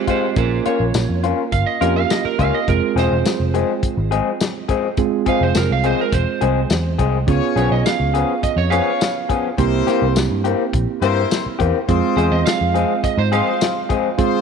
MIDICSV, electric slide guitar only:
0, 0, Header, 1, 2, 480
1, 0, Start_track
1, 0, Key_signature, -4, "minor"
1, 0, Tempo, 575816
1, 303, Time_signature, 4, 2, 24, 8
1, 12013, End_track
2, 0, Start_track
2, 0, Title_t, "Electric slide guitar"
2, 0, Program_c, 0, 29
2, 77, Note_on_c, 0, 68, 57
2, 85, Note_on_c, 0, 72, 74
2, 296, Note_off_c, 0, 68, 0
2, 306, Note_off_c, 0, 72, 0
2, 311, Note_on_c, 0, 68, 76
2, 319, Note_on_c, 0, 72, 89
2, 532, Note_off_c, 0, 68, 0
2, 545, Note_off_c, 0, 72, 0
2, 553, Note_on_c, 0, 73, 76
2, 1016, Note_off_c, 0, 73, 0
2, 1270, Note_on_c, 0, 77, 81
2, 1388, Note_on_c, 0, 75, 78
2, 1389, Note_off_c, 0, 77, 0
2, 1502, Note_off_c, 0, 75, 0
2, 1510, Note_on_c, 0, 70, 94
2, 1630, Note_off_c, 0, 70, 0
2, 1636, Note_on_c, 0, 77, 90
2, 1746, Note_off_c, 0, 77, 0
2, 1755, Note_on_c, 0, 75, 81
2, 1872, Note_off_c, 0, 75, 0
2, 1876, Note_on_c, 0, 70, 79
2, 1986, Note_off_c, 0, 70, 0
2, 2003, Note_on_c, 0, 77, 84
2, 2117, Note_off_c, 0, 77, 0
2, 2121, Note_on_c, 0, 75, 82
2, 2229, Note_off_c, 0, 75, 0
2, 2242, Note_on_c, 0, 70, 86
2, 2468, Note_off_c, 0, 70, 0
2, 2492, Note_on_c, 0, 72, 89
2, 3413, Note_off_c, 0, 72, 0
2, 4409, Note_on_c, 0, 77, 84
2, 4521, Note_off_c, 0, 77, 0
2, 4525, Note_on_c, 0, 72, 82
2, 4632, Note_off_c, 0, 72, 0
2, 4647, Note_on_c, 0, 70, 82
2, 4759, Note_off_c, 0, 70, 0
2, 4771, Note_on_c, 0, 77, 88
2, 4875, Note_off_c, 0, 77, 0
2, 4885, Note_on_c, 0, 72, 92
2, 4998, Note_off_c, 0, 72, 0
2, 5012, Note_on_c, 0, 70, 82
2, 5110, Note_on_c, 0, 72, 81
2, 5115, Note_off_c, 0, 70, 0
2, 6040, Note_off_c, 0, 72, 0
2, 6317, Note_on_c, 0, 73, 85
2, 6432, Note_off_c, 0, 73, 0
2, 6435, Note_on_c, 0, 75, 72
2, 6546, Note_off_c, 0, 75, 0
2, 6551, Note_on_c, 0, 77, 84
2, 7014, Note_off_c, 0, 77, 0
2, 7030, Note_on_c, 0, 75, 75
2, 7150, Note_off_c, 0, 75, 0
2, 7151, Note_on_c, 0, 73, 94
2, 7254, Note_on_c, 0, 77, 93
2, 7263, Note_off_c, 0, 73, 0
2, 7958, Note_off_c, 0, 77, 0
2, 10146, Note_on_c, 0, 72, 87
2, 10266, Note_off_c, 0, 72, 0
2, 10267, Note_on_c, 0, 75, 100
2, 10381, Note_off_c, 0, 75, 0
2, 10384, Note_on_c, 0, 77, 106
2, 10851, Note_off_c, 0, 77, 0
2, 10868, Note_on_c, 0, 75, 82
2, 10988, Note_off_c, 0, 75, 0
2, 10992, Note_on_c, 0, 72, 108
2, 11103, Note_off_c, 0, 72, 0
2, 11107, Note_on_c, 0, 77, 95
2, 12013, Note_off_c, 0, 77, 0
2, 12013, End_track
0, 0, End_of_file